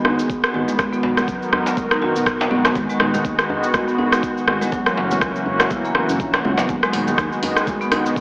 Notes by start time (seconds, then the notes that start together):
Already playing: D#3 G#3 B3 F#4
0.05 D#4, cross-stick, djembe tone, high conga, djembe bass
0.19 cabasa
0.30 kick, cabasa
0.44 cross-stick, cabasa
0.54 G#1 G#3, high conga
0.68 G#3, low conga, cabasa
0.79 D#3 B3 A#4, kick, cross-stick, djembe tone, high conga, cabasa
0.93 B3, low conga, cabasa
1.03 B1 F#4, djembe slap
1.17 F#3, cross-stick, high conga, low conga, cabasa
1.28 F#1, kick, cabasa
1.42 cabasa
1.53 cross-stick, djembe bass
1.66 djembe slap, cabasa
1.77 A#4, kick, high conga, low conga, cabasa
1.91 D#4, cross-stick, cabasa
2.02 F#4, high conga, djembe tone
2.16 B1, cabasa
2.26 kick, cross-stick, cabasa
2.41 djembe slap, cabasa
2.51 B1 B3, high conga, low conga
2.65 B3, cross-stick, djembe slap, cabasa
2.75 G#1 G#3 B3, kick, high conga, djembe tone, cabasa
2.90 G#3, cabasa
3.00 D#1 D#4, cross-stick, djembe slap
3.14 D#3, high conga, low conga, cabasa
3.25 D#2, kick, cabasa
3.39 cross-stick, cabasa
3.50 djembe tone, djembe bass
3.63 cabasa
3.74 F#4, kick, cross-stick, low conga, cabasa
3.88 B3, cabasa
3.98 D#4, djembe tone, high conga, djembe bass
4.12 cross-stick, cabasa
4.23 kick, cabasa
4.37 cabasa
4.48 G#1 G#3, cross-stick, high conga
4.61 G#3, low conga, cabasa
4.72 E3 F#3 A#3 C#4, kick, djembe tone, high conga, cabasa
4.86 F#3, cross-stick, low conga, cabasa
4.97 F#1 C#4, djembe slap
5.11 C#3, high conga, low conga, cabasa
5.21 C#2, kick, cross-stick, cabasa
5.36 cabasa
5.46 djembe bass
5.60 cross-stick, djembe slap, cabasa
5.70 E4, kick, high conga, low conga, cabasa
5.85 A#3, cabasa
5.95 C#4, cross-stick, djembe tone, high conga
6.09 F#1, cabasa
6.20 A#1, kick, cabasa
6.34 cross-stick, djembe slap, cabasa
6.45 C#2 F#3, high conga, low conga
6.57 F#1 F#3, djembe slap, high conga, cabasa
6.69 G#1 D#3 G#3 B3, kick, djembe tone, high conga, cabasa
6.83 G#3, cross-stick, cabasa
6.93 D#1 D#4, open hi-hat, djembe slap
7.07 D#3, high conga, low conga, cabasa
7.18 D#2, kick, cross-stick, cabasa
7.32 cabasa
7.43 open hi-hat, djembe tone, djembe bass
7.57 cross-stick, cabasa
7.67 F#4, kick, low conga, cabasa
7.81 B3, cabasa
7.92 D#4, cross-stick, open hi-hat, djembe tone, high conga, djembe bass
8.06 cabasa
8.16 kick, cabasa